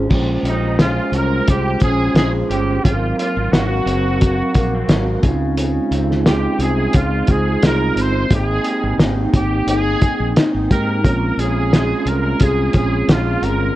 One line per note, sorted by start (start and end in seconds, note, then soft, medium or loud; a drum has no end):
0.00 0.79 G#3 medium
0.00 0.45 C#4 medium
0.00 2.57 F4 medium
0.09 0.38 A#1 loud
0.09 2.83 A#2 medium
0.09 2.81 G#3 medium
0.09 2.79 C#4 medium
0.09 2.80 F4 medium
0.09 kick loud
0.09 crash medium
0.14 2.82 C5 medium
0.43 0.99 A#1 medium
0.43 1.13 C#4 medium
0.43 closed hi-hat medium
0.47 0.78 D#4 medium
0.79 1.49 G#3 medium
0.79 1.17 F4 medium
0.79 snare loud
0.79 closed hi-hat medium
1.12 1.40 C2 medium
1.12 1.82 C#4 medium
1.12 1.51 A#4 medium
1.12 closed hi-hat medium
1.48 1.75 C2 medium
1.48 2.15 G#3 medium
1.48 1.82 G4 loud
1.48 kick medium
1.48 closed hi-hat loud
1.80 2.09 A#1 medium
1.80 2.48 C#4 medium
1.80 2.14 G#4 medium
1.80 kick medium
1.80 closed hi-hat medium
2.14 2.42 A#1 medium
2.14 3.22 G#3 medium
2.14 2.32 G#4 medium
2.14 snare loud
2.14 closed hi-hat medium
2.49 2.77 G1 medium
2.49 2.91 C#4 medium
2.49 2.85 G4 medium
2.49 closed hi-hat medium
2.83 3.12 G#1 loud
2.83 5.31 G#2 medium
2.83 5.20 F#3 medium
2.83 5.19 C4 medium
2.83 3.17 F4 medium
2.83 5.20 F5 medium
2.83 kick loud
2.83 closed hi-hat medium
2.88 2.93 G#4 medium
2.95 5.25 A#4 medium
3.17 3.38 A#3 medium
3.17 3.53 F4 medium
3.17 closed hi-hat medium
3.36 3.49 G#1 medium
3.36 3.85 C4 soft
3.51 3.80 G#1 medium
3.51 4.20 F#3 medium
3.51 5.23 F#4 medium
3.51 snare loud
3.51 closed hi-hat medium
3.86 4.41 F#1 medium
3.86 4.55 C4 medium
3.86 closed hi-hat medium
4.21 4.88 F#3 medium
4.21 kick medium
4.21 closed hi-hat loud
4.55 4.82 A#1 medium
4.55 4.75 A#3 medium
4.55 kick medium
4.55 closed hi-hat medium
4.75 5.31 C4 soft
4.88 5.16 G#1 medium
4.88 5.31 F#3 medium
4.88 snare loud
4.88 closed hi-hat medium
5.20 5.78 C#2 medium
5.20 5.56 C#3 medium
5.20 8.25 C4 medium
5.20 8.26 D#4 medium
5.20 8.27 F4 medium
5.20 kick loud
5.20 closed hi-hat medium
5.25 8.28 G#3 medium
5.58 8.31 C#3 medium
5.58 closed hi-hat medium
5.91 6.46 C#2 medium
5.91 6.60 C4 medium
5.91 closed hi-hat medium
6.11 snare soft
6.26 6.95 G#3 medium
6.26 6.63 G4 medium
6.26 snare loud
6.26 closed hi-hat medium
6.59 6.87 C2 medium
6.59 7.29 C4 medium
6.59 6.97 G#4 medium
6.59 closed hi-hat medium
6.93 7.21 C#2 medium
6.93 7.64 G#3 medium
6.93 7.32 F4 medium
6.93 kick loud
6.93 closed hi-hat loud
7.27 7.55 C#2 medium
7.27 7.97 C4 medium
7.27 7.64 G#4 medium
7.27 kick medium
7.27 closed hi-hat medium
7.62 7.90 C2 medium
7.62 8.32 G#3 medium
7.62 8.03 A#4 medium
7.62 snare loud
7.62 closed hi-hat medium
7.96 8.23 G1 medium
7.96 8.99 C4 medium
7.96 closed hi-hat medium
8.01 8.33 C5 medium
8.29 8.58 G#1 loud
8.29 11.07 G#3 medium
8.29 10.99 A#3 medium
8.29 11.00 C4 medium
8.29 11.01 D#4 medium
8.29 kick loud
8.29 closed hi-hat medium
8.34 8.97 G#4 medium
8.34 11.01 G5 medium
8.64 9.33 G4 medium
8.64 closed hi-hat medium
8.84 8.96 G#1 medium
8.98 9.26 G#1 medium
8.98 9.67 D#4 medium
8.98 snare loud
8.98 closed hi-hat medium
9.33 9.60 G#1 medium
9.33 9.66 G4 medium
9.33 kick medium
9.33 closed hi-hat medium
9.67 9.94 G1 medium
9.67 10.35 D#4 medium
9.67 10.32 G#4 loud
9.67 closed hi-hat loud
10.01 kick medium
10.01 closed hi-hat medium
10.20 10.32 A#1 medium
10.35 11.11 D#4 medium
10.35 muted fretless electric bass stroke soft
10.35 snare loud
10.35 closed hi-hat medium
10.54 10.67 G#1 medium
10.70 11.05 G#2 medium
10.70 11.11 G4 medium
10.70 11.41 A#4 medium
10.70 kick medium
10.70 closed hi-hat medium
11.02 11.31 A#1 medium
11.02 13.75 A#2 medium
11.02 13.72 G#3 medium
11.02 13.73 C4 medium
11.02 13.74 C#4 medium
11.02 kick loud
11.02 closed hi-hat medium
11.07 13.74 F4 medium
11.37 11.92 A#1 medium
11.37 12.06 C#4 medium
11.37 12.09 G#4 medium
11.37 closed hi-hat medium
11.73 12.40 G#3 medium
11.73 snare loud
11.73 closed hi-hat medium
12.06 12.33 C2 medium
12.06 12.72 C#4 medium
12.06 12.44 A#4 medium
12.06 closed hi-hat medium
12.40 12.68 C2 medium
12.40 13.08 G#3 medium
12.40 12.75 G#4 medium
12.40 kick medium
12.40 closed hi-hat medium
12.73 13.02 A#1 medium
12.73 13.41 C#4 medium
12.73 13.12 G#4 medium
12.73 kick medium
12.73 closed hi-hat medium
13.08 13.35 A#1 medium
13.08 13.76 G#3 medium
13.08 13.45 F4 medium
13.08 snare loud
13.08 closed hi-hat medium
13.42 13.69 G1 medium
13.42 13.76 C#4 medium
13.42 13.76 A#4 medium
13.42 closed hi-hat medium